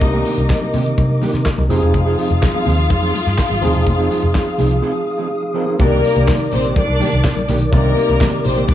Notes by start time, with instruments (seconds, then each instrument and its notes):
Already playing: tine electric piano A#3 D#4 D#5, string section D#4 D#5, tonewheel organ A#4 D#5 D6
0.00 picked electric bass C2, tine electric piano C3 A#3 D4 D#5, muted clean electric guitar stroke, kick, closed hi-hat, muted conga, low conga
0.08 tine electric piano D#4
0.14 clean electric guitar D#3 A#3 D4 G4
0.25 clean electric guitar D#3 A#3 D4 G4, open hi-hat, muted conga
0.38 picked electric bass C2, muted clean electric guitar stroke, closed hi-hat
0.50 kick, snare, clap, closed hi-hat, high conga
0.61 muted clean electric guitar stroke, high conga
0.73 picked electric bass C3, clean electric guitar D#3 A#3 D4 G4, open hi-hat, muted conga, low conga
0.86 muted clean electric guitar stroke, closed hi-hat
0.98 picked electric bass C3, kick, closed hi-hat, muted conga, high conga
1.10 muted clean electric guitar stroke
1.22 clean electric guitar D#3 A#3 D4 G4, open hi-hat, muted conga, high conga
1.33 picked electric bass C3, muted clean electric guitar stroke, snare, closed hi-hat
1.46 muted clean electric guitar stroke, kick, snare, clap, closed hi-hat, muted conga
1.58 picked electric bass C2, muted clean electric guitar stroke, high conga
1.69 picked electric bass F1, tine electric piano F3 C4 D#4 G4, clean electric guitar F3 C4 D#4 G#4, string section F4 F5, tonewheel organ G#4 F5 D#6, open hi-hat, low conga
1.78 tine electric piano G#4, clean electric guitar G#4, closed hi-hat
1.82 picked electric bass E1, clean electric guitar F3 C4 D#4
1.94 picked electric bass F1, kick, closed hi-hat, muted conga, low conga
2.06 clean electric guitar F3 C4 D#4 G#4
2.18 clean electric guitar F3 C4 D#4 G#4, open hi-hat
2.30 picked electric bass F1, muted clean electric guitar stroke, closed hi-hat
2.42 kick, snare, clap, closed hi-hat, high conga
2.54 clean electric guitar F3 C4 D#4 G#4, high conga
2.66 picked electric bass D#2, clean electric guitar F3 C4 D#4 G#4, open hi-hat, muted conga, low conga
2.78 muted clean electric guitar stroke, closed hi-hat
2.90 picked electric bass F2, muted clean electric guitar stroke, kick, closed hi-hat, muted conga, high conga
3.02 clean electric guitar F3 C4 D#4 G#4
3.14 muted clean electric guitar stroke, open hi-hat, high conga
3.26 picked electric bass G2, muted clean electric guitar stroke, snare, closed hi-hat
3.38 muted clean electric guitar stroke, kick, snare, clap, closed hi-hat, muted conga
3.50 picked electric bass G#1, muted clean electric guitar stroke, high conga
3.61 picked electric bass D#1, tine electric piano F3 C4 D#4 G#4, clean electric guitar F3 C4 D#4 G#4, open hi-hat, muted conga, low conga
3.75 picked electric bass E1, muted clean electric guitar stroke, closed hi-hat
3.86 picked electric bass F1, muted clean electric guitar stroke, kick, closed hi-hat, muted conga, low conga
3.98 clean electric guitar F3 C4 D#4 G#4
4.11 clean electric guitar F3 C4 D#4 G#4, open hi-hat, muted conga
4.22 picked electric bass F1, muted clean electric guitar stroke, closed hi-hat
4.35 kick, snare, clap, closed hi-hat, high conga
4.46 muted clean electric guitar stroke
4.58 picked electric bass C2, clean electric guitar F3 C4 D#4 G#4, open hi-hat, muted conga, low conga
4.70 muted clean electric guitar stroke, closed hi-hat
4.82 clean electric guitar F3 C4 D#4 G#4
4.94 muted clean electric guitar stroke
5.06 muted clean electric guitar stroke
5.18 clean electric guitar F3 C4 D#4 G#4
5.30 muted clean electric guitar stroke
5.43 muted clean electric guitar stroke
5.54 clean electric guitar F3 C4 D#4 G#4, tine electric piano F3 C4 D#4 A#4
5.67 clean electric guitar F3 C4 D#4 G#4
5.78 picked electric bass C2, tine electric piano C3 A#3 D#4 D5, clean electric guitar D#3 A#3 D4 G4, string section A#3 A#4, tonewheel organ A#4 D5 D6, kick, closed hi-hat, muted conga, low conga
6.04 open hi-hat, muted conga
6.15 picked electric bass C2, clean electric guitar D#3 A#3 D4 G4, closed hi-hat
6.27 clean electric guitar D#3 A#3 D4 A#4, kick, snare, clap, closed hi-hat, muted conga, high conga
6.39 muted clean electric guitar stroke
6.52 picked electric bass A#1, string section C4 C5, muted clean electric guitar stroke, open hi-hat, muted conga, low conga
6.64 clean electric guitar D#3 A#3 D4 G4, closed hi-hat
6.76 string section D4 D5, kick, closed hi-hat, muted conga, high conga
6.88 picked electric bass C2, muted clean electric guitar stroke
7.00 clean electric guitar D#3 A#3 D4 G4, open hi-hat, high conga
7.12 picked electric bass C2, muted clean electric guitar stroke, closed hi-hat
7.24 picked electric bass A#1, muted clean electric guitar stroke, kick, snare, clap, closed hi-hat, muted conga
7.36 muted clean electric guitar stroke, high conga
7.48 picked electric bass B1, clean electric guitar D#3 A#3 D4 G4, open hi-hat, muted conga, low conga
7.61 muted clean electric guitar stroke, closed hi-hat
7.71 picked electric bass C2, tine electric piano C3 A#3 D#4 D5, clean electric guitar D#3 A#3 D4 G4, string section A#3 A#4, kick, closed hi-hat, muted conga, low conga
7.97 muted clean electric guitar stroke, open hi-hat, muted conga
8.09 picked electric bass C2, clean electric guitar D#3 A#3 D4 A#4, closed hi-hat
8.21 clean electric guitar D#3 A#3 D4 A#4, kick, snare, clap, closed hi-hat, muted conga, high conga
8.33 muted clean electric guitar stroke
8.44 picked electric bass A#1, string section C4 C5, muted clean electric guitar stroke, open hi-hat, low conga
8.56 clean electric guitar D#3 A#3 D4 G4, closed hi-hat
8.68 string section D4 D5, kick, closed hi-hat, muted conga, high conga